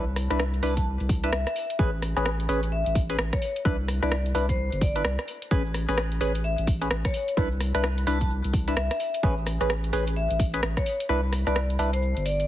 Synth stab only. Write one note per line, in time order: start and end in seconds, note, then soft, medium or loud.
0.30 0.44 D4 medium
0.30 0.44 E4 medium
0.30 0.44 B4 medium
0.63 0.74 D4 medium
0.63 0.74 E4 medium
0.63 0.74 B4 medium
1.24 1.31 D4 medium
1.24 1.31 E4 medium
1.24 1.31 B4 medium
1.79 1.91 C#4 medium
1.79 1.91 G#4 medium
1.79 1.91 B4 loud
2.17 2.30 C#4 medium
2.17 2.30 G#4 medium
2.17 2.30 B4 medium
2.49 2.60 C#4 medium
2.49 2.60 G#4 medium
2.49 2.60 B4 loud
3.10 3.17 C#4 medium
3.10 3.17 G#4 medium
3.10 3.17 B4 medium
3.65 3.77 D4 medium
3.65 3.77 E4 medium
3.65 3.77 B4 loud
4.03 4.16 D4 medium
4.03 4.16 E4 medium
4.03 4.16 B4 medium
4.35 4.46 D4 medium
4.35 4.46 E4 medium
4.35 4.46 B4 medium
4.96 5.03 D4 medium
4.96 5.03 E4 medium
4.96 5.03 B4 medium
5.51 5.63 C#4 medium
5.51 5.63 G#4 medium
5.51 5.63 B4 loud
5.89 6.02 C#4 medium
5.89 6.02 G#4 medium
5.89 6.02 B4 medium
6.21 6.32 C#4 medium
6.21 6.32 G#4 medium
6.21 6.32 B4 loud
6.81 6.89 C#4 medium
6.81 6.89 G#4 medium
6.81 6.89 B4 medium
7.37 7.49 D4 medium
7.37 7.49 E4 medium
7.37 7.49 B4 loud
7.75 7.88 D4 medium
7.75 7.88 E4 medium
7.75 7.88 B4 medium
8.07 8.18 D4 medium
8.07 8.18 E4 medium
8.07 8.18 B4 medium
8.68 8.75 D4 medium
8.68 8.75 E4 medium
8.68 8.75 B4 medium
9.23 9.35 C#4 medium
9.23 9.35 G#4 medium
9.23 9.35 B4 loud
9.61 9.74 C#4 medium
9.61 9.74 G#4 medium
9.61 9.74 B4 medium
9.93 10.04 C#4 medium
9.93 10.04 G#4 medium
9.93 10.04 B4 medium
10.54 10.61 C#4 medium
10.54 10.61 G#4 medium
10.54 10.61 B4 medium
11.09 11.21 D4 medium
11.09 11.21 E4 medium
11.09 11.21 B4 loud
11.47 11.60 D4 medium
11.47 11.60 E4 medium
11.47 11.60 B4 medium
11.79 11.91 D4 medium
11.79 11.91 E4 medium
11.79 11.91 B4 loud